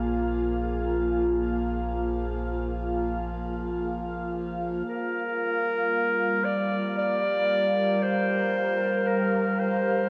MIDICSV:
0, 0, Header, 1, 5, 480
1, 0, Start_track
1, 0, Tempo, 500000
1, 9686, End_track
2, 0, Start_track
2, 0, Title_t, "Clarinet"
2, 0, Program_c, 0, 71
2, 4689, Note_on_c, 0, 70, 98
2, 6187, Note_on_c, 0, 74, 101
2, 6202, Note_off_c, 0, 70, 0
2, 6693, Note_off_c, 0, 74, 0
2, 6698, Note_on_c, 0, 74, 107
2, 7703, Note_on_c, 0, 72, 103
2, 7717, Note_off_c, 0, 74, 0
2, 8711, Note_on_c, 0, 70, 89
2, 8726, Note_off_c, 0, 72, 0
2, 9208, Note_on_c, 0, 72, 97
2, 9223, Note_off_c, 0, 70, 0
2, 9686, Note_off_c, 0, 72, 0
2, 9686, End_track
3, 0, Start_track
3, 0, Title_t, "Ambient pad"
3, 0, Program_c, 1, 92
3, 0, Note_on_c, 1, 58, 84
3, 0, Note_on_c, 1, 65, 77
3, 0, Note_on_c, 1, 68, 63
3, 0, Note_on_c, 1, 77, 81
3, 4678, Note_on_c, 1, 55, 83
3, 4696, Note_off_c, 1, 68, 0
3, 5586, Note_on_c, 1, 67, 95
3, 6254, Note_on_c, 1, 70, 94
3, 6895, Note_off_c, 1, 58, 0
3, 8342, Note_off_c, 1, 65, 0
3, 9686, Note_off_c, 1, 55, 0
3, 9686, Note_off_c, 1, 67, 0
3, 9686, Note_off_c, 1, 70, 0
3, 9686, Note_off_c, 1, 77, 0
3, 9686, End_track
4, 0, Start_track
4, 0, Title_t, "Harmonium"
4, 0, Program_c, 2, 20
4, 0, Note_on_c, 2, 53, 61
4, 4683, Note_off_c, 2, 53, 0
4, 4697, Note_on_c, 2, 53, 71
4, 9686, Note_off_c, 2, 53, 0
4, 9686, End_track
5, 0, Start_track
5, 0, Title_t, "Sub bass"
5, 0, Program_c, 3, 38
5, 0, Note_on_c, 3, 34, 77
5, 4632, Note_off_c, 3, 34, 0
5, 9686, End_track
0, 0, End_of_file